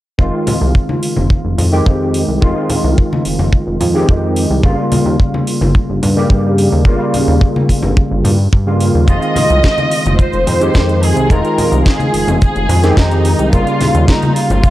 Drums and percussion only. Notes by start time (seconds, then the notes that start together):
0.19 kick
0.47 open hi-hat, high conga, low conga
0.75 kick
0.89 high conga
1.03 open hi-hat
1.16 high conga
1.30 kick
1.58 open hi-hat, low conga
1.86 kick
2.14 open hi-hat
2.42 kick
2.69 open hi-hat, low conga
2.98 kick
3.13 high conga
3.25 open hi-hat
3.39 high conga
3.53 kick
3.80 open hi-hat, low conga
4.09 kick
4.36 open hi-hat
4.63 kick
4.92 open hi-hat, high conga, low conga
5.20 kick
5.34 high conga
5.47 open hi-hat
5.62 high conga
5.75 kick
6.03 open hi-hat, low conga
6.30 kick
6.58 open hi-hat
6.85 kick
7.14 open hi-hat, low conga
7.41 kick
7.56 high conga
7.69 kick, open hi-hat
7.82 high conga
7.97 kick
8.24 open hi-hat, low conga
8.53 kick
8.80 open hi-hat
9.08 kick, closed hi-hat, shaker
9.22 closed hi-hat, shaker
9.36 snare, open hi-hat, high conga, low conga
9.50 closed hi-hat, shaker
9.63 kick, snare, closed hi-hat, shaker
9.78 closed hi-hat, high conga, shaker
9.91 open hi-hat
10.06 closed hi-hat, high conga, shaker
10.19 kick, closed hi-hat, shaker
10.33 closed hi-hat, shaker
10.47 open hi-hat, low conga
10.61 closed hi-hat, shaker
10.74 kick, snare, closed hi-hat, shaker
10.89 closed hi-hat, shaker
11.03 open hi-hat
11.17 closed hi-hat, shaker
11.30 kick, closed hi-hat, shaker
11.45 closed hi-hat, shaker
11.58 open hi-hat, low conga
11.73 closed hi-hat, shaker
11.86 kick, snare, closed hi-hat, shaker
12.00 closed hi-hat, high conga, shaker
12.14 open hi-hat
12.28 closed hi-hat, high conga, shaker
12.41 kick, closed hi-hat, shaker
12.55 closed hi-hat, shaker
12.69 open hi-hat, low conga
12.83 snare, closed hi-hat, shaker
12.97 kick, snare, closed hi-hat, shaker
13.11 closed hi-hat, shaker
13.25 open hi-hat
13.39 closed hi-hat, shaker
13.53 kick, closed hi-hat, shaker
13.67 closed hi-hat, shaker
13.81 snare, open hi-hat, high conga, low conga
13.95 closed hi-hat, shaker
14.08 kick, snare, closed hi-hat, shaker
14.22 closed hi-hat, high conga, shaker
14.36 open hi-hat
14.50 closed hi-hat, high conga, shaker
14.64 kick, closed hi-hat, shaker